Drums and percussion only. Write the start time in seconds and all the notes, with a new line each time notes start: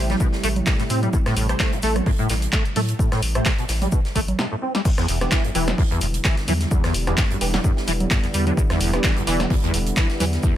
0.10 snare, closed hi-hat, low conga
0.20 kick, shaker
0.33 snare
0.44 open hi-hat, shaker
0.56 closed hi-hat, low conga
0.66 kick, snare, clap, shaker
0.79 snare, closed hi-hat
0.90 open hi-hat, shaker
1.03 closed hi-hat, low conga
1.13 kick, shaker
1.26 cross-stick, snare, closed hi-hat
1.37 open hi-hat, shaker
1.49 cross-stick, closed hi-hat
1.60 kick, snare, clap, shaker
1.73 closed hi-hat
1.82 open hi-hat, shaker
1.96 cross-stick, closed hi-hat, low conga
2.06 kick, open hi-hat
2.19 closed hi-hat
2.29 snare, open hi-hat, shaker
2.42 closed hi-hat
2.52 kick, clap, shaker
2.65 closed hi-hat
2.76 open hi-hat, low conga
2.88 closed hi-hat
2.99 kick, shaker
3.12 cross-stick, snare, closed hi-hat
3.22 open hi-hat, shaker
3.35 cross-stick, closed hi-hat
3.45 kick, snare, clap, shaker
3.58 closed hi-hat
3.69 snare, open hi-hat, shaker
3.82 closed hi-hat, low conga
3.92 kick, shaker
4.05 snare, closed hi-hat
4.15 kick, open hi-hat, shaker
4.28 closed hi-hat, low conga
4.39 snare
4.75 snare
4.85 kick, crash, shaker
4.97 cross-stick, snare, closed hi-hat
5.08 open hi-hat, shaker
5.21 cross-stick, snare, closed hi-hat
5.32 kick, snare, clap, shaker
5.44 closed hi-hat
5.55 open hi-hat, shaker
5.68 cross-stick, snare, closed hi-hat, low conga
5.78 kick, open hi-hat
5.91 closed hi-hat
6.01 open hi-hat, shaker
6.14 closed hi-hat
6.24 kick, snare, clap, shaker
6.37 snare, closed hi-hat
6.48 open hi-hat, low conga, shaker
6.60 snare, closed hi-hat
6.71 kick, shaker
6.84 cross-stick, snare, closed hi-hat
6.94 open hi-hat, shaker
7.07 cross-stick, snare, closed hi-hat
7.17 kick, snare, clap, shaker
7.31 closed hi-hat
7.41 snare, open hi-hat, shaker
7.54 snare, closed hi-hat, low conga
7.64 kick, shaker
7.77 snare
7.88 open hi-hat, shaker
8.00 closed hi-hat, low conga
8.11 kick, snare, clap, shaker
8.24 snare, closed hi-hat
8.34 open hi-hat, shaker
8.47 closed hi-hat, low conga
8.57 kick, shaker
8.70 cross-stick, snare, closed hi-hat
8.81 open hi-hat, shaker
8.93 cross-stick, snare, closed hi-hat
9.04 kick, snare, clap, shaker
9.17 closed hi-hat
9.27 open hi-hat, shaker
9.40 cross-stick, snare, closed hi-hat, low conga
9.50 kick, open hi-hat
9.64 closed hi-hat
9.74 open hi-hat, shaker
9.87 closed hi-hat
9.96 kick, snare, clap, shaker
10.10 snare, closed hi-hat
10.20 open hi-hat, low conga, shaker
10.33 snare, closed hi-hat
10.43 kick, shaker